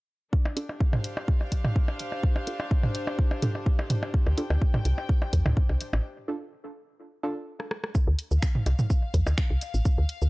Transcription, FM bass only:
4.26 D2
4.50 D2
4.85 C2
5.33 E2
5.45 D2
5.69 C2
5.93 A1
8.07 D2
8.31 D2
8.66 C2
9.14 E2
9.27 D2
9.50 C2
9.74 A1
9.98 D2
10.22 D2

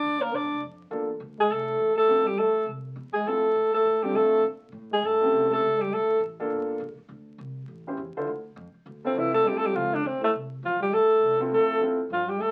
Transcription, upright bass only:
0.03 D2
0.32 A#1
0.42 G1
0.52 F1
0.61 F2
0.91 E2
1.20 D2
1.49 C2
1.78 A1
1.96 muted upright bass stroke
2.07 A#1
2.26 muted upright bass stroke
2.37 A1
2.66 C2
2.96 E2
3.14 muted upright bass stroke
3.26 F2
3.55 A#2
3.85 A2
4.14 D3
4.43 A#2
4.72 A2
5.02 G2
5.31 C2
5.60 C#2
5.90 D2
6.20 A1
6.50 G1
6.80 A#1
6.98 muted upright bass stroke
7.09 D2
7.38 C2
7.68 A1
7.97 E2
8.15 muted upright bass stroke
8.27 D2
8.56 F2
8.74 muted upright bass stroke
8.86 D2
9.15 C2
9.45 A1
9.74 C#2
10.04 D2
10.33 C2
10.62 A1
10.80 muted upright bass stroke
10.92 A#1
11.22 C2
11.51 F2
11.80 A2
12.10 G2
12.40 F2

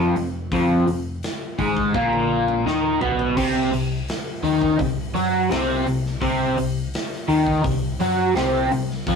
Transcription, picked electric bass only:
Already playing: F1
0.16 F1
0.52 F1
0.87 F1
1.59 G#1
1.95 A#1
2.66 D#2
3.02 B1
3.37 C2
3.72 C2
4.43 D#2
4.79 C2
5.15 F#2
5.50 C2
5.86 C2
6.22 C2
6.57 C2
7.28 D#2
7.64 C2
7.99 F#2
8.35 C2
8.71 C2
9.07 F1

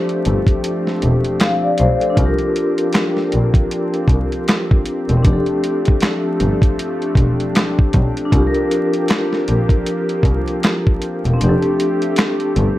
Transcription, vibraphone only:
Already playing: C4 D4 G4 A4 C5
1.41 F5
1.64 D5
1.80 C5
2.01 A4
2.10 D4
2.15 F4
2.20 G4
2.26 A#4
5.17 C4
5.23 D4
5.28 G4
5.33 A4
8.25 D4
8.30 F4
8.35 G4
8.41 A4
8.47 A#4
11.33 C4
11.38 D4
11.44 G4
11.49 A4

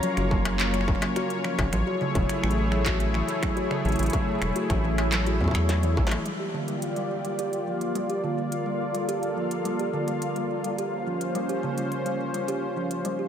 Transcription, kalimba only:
0.03 F#3
0.17 F#4
0.31 C#3
0.45 F#3
0.74 F#3
1.02 F#3
1.16 F#4
1.44 F3
1.73 F#3
1.87 F#4
2.01 C#3
2.15 F#3
2.43 F#3
2.72 F#3
2.86 F#4
3.14 E3
3.42 F#3
3.57 F#4
3.71 C#3
3.85 F#3
4.13 F#3
4.42 F#3
4.56 F#4
4.84 E3
5.12 F#3
5.26 F#4
5.41 F#3
5.55 F#3
5.69 F#3
5.83 E3
6.11 E3
6.25 G3
6.40 G4
6.54 D3
6.68 G3
6.96 G3
7.25 G3
7.39 G4
7.67 F3
7.95 G3
8.10 G4
8.24 D3
8.38 G3
8.66 G3
8.94 G3
9.09 G4
9.37 F3
9.65 G3
9.79 G4
9.94 D3
10.08 G3
10.36 G3
10.64 G3
10.78 G4
11.07 F3
11.35 G3
11.49 G4
11.63 C#3
11.77 G3
12.06 G3
12.34 G3
12.48 G4
12.77 F3
13.05 G3
13.19 G4

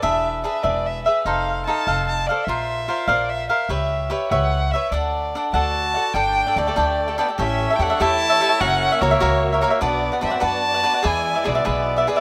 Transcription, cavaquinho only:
0.02 D4 G#4 B4 E5
0.44 D4 G#4 B4 E5
0.63 D4 G#4 B4 E5
1.06 G#4 B4 E5
1.26 D#4 A4 C5 F5
1.67 D#4 A4 C5 F5
1.88 D#4 A4 C5 F5
2.29 A4 C5 F5
2.48 F4 A#4 C5
2.88 F4 A#4 C5 F5
3.08 F4 A#4 C5 F5
3.49 A#4 C5 F5
3.69 G4 B4 C#5 E5
4.10 G4 B4 C#5 E5
4.31 G4 B4 C#5 E5
4.73 B4 C#5 E5
4.92 D4 A4 D5 F#5
5.35 D4 A4 D5 F#5
5.54 D4 A4 D5 F#5
5.94 A4 D5 F#5
6.15 D4 A4 D5 G5
6.47 A4 D5 G5
6.57 D4 A4 D5 G5
6.67 A4 D5 G5
6.76 D4 A4 D5 G5
7.08 A4 D5 G5
7.18 D4 A4 D5 G5
7.28 A4 D5 G5
7.38 G4 A4 C#5 E5
7.70 A4 C#5 E5
7.79 G4 A4 C#5 E5
7.90 A4 C#5 E5
8.00 G4 A4 C#5 E5
8.30 A4 C#5 E5
8.40 G4 A4 C#5 E5
8.49 A4 C#5 E5
8.60 F#4 A#4 C#5 E5
8.92 A#4 C#5 E5
9.01 F#4 A#4 C#5 E5
9.11 A#4 C#5 E5
9.20 F#4 A#4 C#5 E5
9.53 A#4 C#5 E5
9.61 F#4 A#4 C#5 E5
9.70 A#4 C#5 E5
9.81 D4 B4 D5 F#5
10.12 B4 D5 F#5
10.21 D4 B4 D5 F#5
10.30 B4 D5 F#5
10.40 D4 B4 D5 F#5
10.74 B4 D5 F#5
10.83 D4 B4 D5 F#5
10.94 B4 D5 F#5
11.03 G#4 B4 D5 E5
11.35 B4 D5 E5
11.44 G#4 B4 D5 E5
11.55 B4 D5 E5
11.65 G#4 B4 D5 E5
11.96 B4 D5 E5
12.07 G#4 B4 D5 E5
12.16 B4 D5 E5

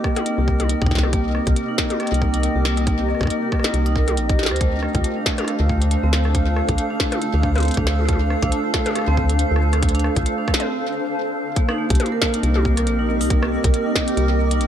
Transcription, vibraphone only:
0.04 A#3
0.16 D#4
0.26 A#3
0.38 G4
0.48 A#3
0.60 D#4
0.70 A#3
0.82 D#4
0.91 A#3
1.03 G4
1.13 A#3
1.25 D#4
1.35 A#3
1.47 G4
1.56 A#3
1.69 D#4
1.78 A#3
1.90 G4
2.00 A#3
2.12 D#4
2.22 A#3
2.34 D#4
2.43 A#3
2.56 G4
2.65 A#3
2.77 D#4
2.87 A#3
2.99 G4
3.09 A#3
3.21 D#4
3.30 A#3
3.42 G4
3.52 A#3
3.64 D#4
3.74 A#3
3.86 D#4
3.96 A#4
4.08 A#3
4.17 D#4
4.29 G4
4.39 G4
4.51 C5
4.61 A3
4.73 D4
4.83 A3
4.95 F4
5.04 A3
5.16 D4
5.26 A3
5.38 D4
5.48 A3
5.60 F4
5.70 A3
5.82 D4
5.91 A3
6.03 C4
6.13 A3
6.25 D4
6.35 A3
6.47 F4
6.56 A3
6.69 D4
6.78 A3
6.90 D4
7.00 A3
7.12 F4
7.22 A3
7.34 D4
7.43 A3
7.56 C4
7.65 A3
7.77 D4
7.87 A3
7.99 F4
8.09 A3
8.21 D4
8.30 A3
8.43 D4
8.52 A3
8.64 F4
8.74 A3
8.86 D4
8.96 A3
9.08 C4
9.17 A3
9.30 D4
9.39 A3
9.51 F4
9.61 A3
9.73 D4
9.83 A3
9.95 D4
10.04 A3
10.16 F4
10.26 A3
10.38 D4
10.48 A3
10.60 C4
11.56 A#3
11.69 D#4
11.78 A#3
11.90 G4
12.00 A#3
12.12 A#4
12.22 A#3
12.34 D#4
12.43 A#3
12.56 G4
12.65 A#3
12.77 A#4
12.87 A#3
12.99 D#4
13.09 A#3
13.21 D#4
13.30 A#3
13.43 G4
13.52 A#3
13.64 A#4
13.74 A#3
13.86 D#4
13.96 A#3
14.08 G4
14.17 A#3
14.30 A#4
14.39 A#3
14.51 D#4
14.61 A#3

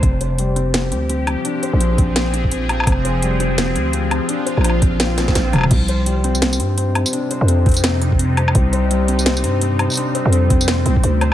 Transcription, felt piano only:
0.03 C4
0.21 C5
0.39 G3
0.56 C4
0.74 C4
0.92 C4
1.10 C4
1.27 C4
1.45 D4
1.63 C5
1.81 C4
1.98 C4
2.16 C4
2.34 C4
2.51 C4
2.69 C4
2.87 C4
3.05 C5
3.23 G3
3.40 C4
3.58 C4
3.75 C4
3.93 C4
4.11 C4
4.29 D4
4.46 C5
4.64 C4
4.82 C4
5.00 C4
5.18 C4
5.36 C4
5.53 C4
5.71 C4
5.89 C5
6.06 G3
6.24 C4
6.42 C4
6.60 C4
6.78 C4
6.95 C4
7.13 D4
7.31 C5
7.49 C4
7.66 C4
7.84 C4
8.02 C4
8.19 C4
8.37 C4
8.55 C4
8.73 C5
8.91 G3
9.09 C4
9.26 C4
9.44 C4
9.62 C4
9.79 C4
9.97 D4
10.15 C5
10.32 C4
10.50 C4
10.68 C4
10.86 C4
11.04 C4
11.21 C5

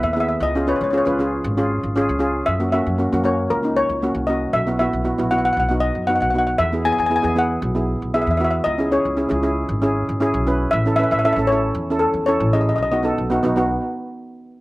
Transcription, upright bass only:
0.03 D#2
0.40 C#2
0.81 C#2
1.07 C#2
1.44 G#1
1.83 G#1
2.09 C#2
2.48 F#2
2.86 F#2
3.13 F#2
3.50 C#2
3.89 C#2
4.15 C2
4.53 B1
4.93 B1
5.19 B1
5.57 B1
5.95 F#2
6.20 B1
6.59 E2
6.98 E2
7.24 E2
7.62 B1
8.02 B1
8.27 E2
8.66 C#2
9.05 C#2
9.31 C#2
9.69 G#1
10.09 G#1
10.34 B1
10.73 A1
11.11 A1
11.36 A1
11.75 E2
12.13 E2
12.40 A1
12.78 B1
13.18 B1
13.43 B1

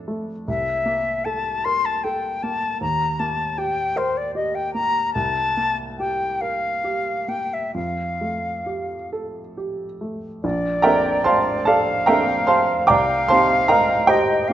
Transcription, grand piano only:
Already playing: F2 A3 D4 A4
0.08 A3
0.48 C2
0.86 A#3
1.26 A4
1.66 A#4
2.05 A4
2.43 A#3
2.81 D#2
3.20 A#3
3.58 G4
3.96 A#4
4.35 G4
4.75 A#3
5.15 C2
5.57 A#3
6.00 G4
6.42 A#4
6.84 G4
7.28 A#3
7.74 F2
8.21 A3
8.66 G4
9.13 A4
9.57 G4
10.01 A3
10.44 A#1
10.82 A#3 C4 D4 A4 A#4 E5 G5 A#5
11.24 C5 F5 A5 C6
11.65 A4 D5 F5 A5
12.06 A#3 C4 D4 A4 A#4 E5 G5 A#5
12.47 C5 F5 A5 C6
12.87 C2 D5 G5 A#5 D6
13.28 A#3 C4 D#4 G4 C5 F5 A5 C6
13.68 A#4 D#5 G5 A#5
14.07 G4 C5 D#5 G5
14.50 A#3

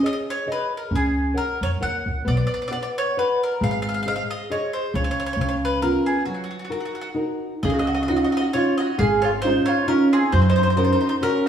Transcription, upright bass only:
0.91 C#2
1.61 F2
1.82 D#2
2.06 C#2
2.26 B1
3.61 G#1
4.94 C#2
5.36 C#2
7.63 C#2
8.99 G#1
10.33 F#2

